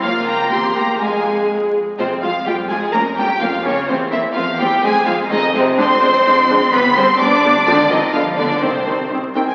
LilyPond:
<<
  \new Staff \with { instrumentName = "Violin section" } { \time 2/4 \key f \minor \tempo 4 = 126 f''8 bes''8 c'''8 bes''8 | aes''4 r4 | c''8 f''8 g''8 aes''8 | bes''8 g''8 f''8 des''8 |
c''8 e''8 f''8 g''8 | aes''8 f''8 ees''8 c''8 | \key c \minor c'''2 | b''8 c'''8 d'''4 |
d''8 ees''8 f''8 d''8 | c''4 r8 g''16 aes''16 | }
  \new Staff \with { instrumentName = "Violin section" } { \time 2/4 \key f \minor des''8 g''8 g''8 g''8 | f''4 r4 | c'8 f'8 g'8 aes'8 | bes'8 g'8 f'8 des'8 |
c'8 e'8 f'8 g'8 | aes'8 f'8 ees'8 c'8 | \key c \minor c''2 | b'8 c''8 d''4 |
d'8 ees'8 f'8 d'8 | c'4 r4 | }
  \new Staff \with { instrumentName = "Viola section" } { \time 2/4 \key f \minor <bes f'>4 <bes g'>4 | <aes aes'>4. r8 | <aes f'>8 <aes f'>8 <aes f'>8 <aes f'>8 | <bes des'>8 <bes des'>8 <bes des'>8 <bes des'>8 |
<bes c'>8 <bes c'>8 <bes c'>8 <bes c'>8 | <aes c'>8 <aes c'>8 <aes c'>8 <aes c'>8 | \key c \minor <aes d'>8 <aes d'>8 <aes d'>8 <aes d'>8 | <g b>8 <g b>8 <g b>8 <g b>8 |
<f c'>8 <f c'>8 <d b>8 <d b>8 | <ees c'>8 <ees c'>8 <ees c'>8 <ees c'>8 | }
  \new Staff \with { instrumentName = "Cello section" } { \clef bass \time 2/4 \key f \minor f8 bes8 c'8 bes8 | aes4 r4 | c8 f8 g8 aes8 | bes8 g8 f8 des8 |
c8 e8 f8 g8 | aes8 f8 ees8 c8 | \key c \minor c'2 | b8 c'8 d'4 |
d8 ees8 f8 d8 | c4 r4 | }
  \new Staff \with { instrumentName = "Double bass section" } { \clef bass \time 2/4 \key f \minor des,4 e,4 | f,4. r8 | f,4 f,4 | f,4 f,4 |
e,4 e,4 | f,4 f,4 | \key c \minor f,4 f,4 | g,,4 g,,4 |
aes,,4 g,,4 | c,4 c,4 | }
>>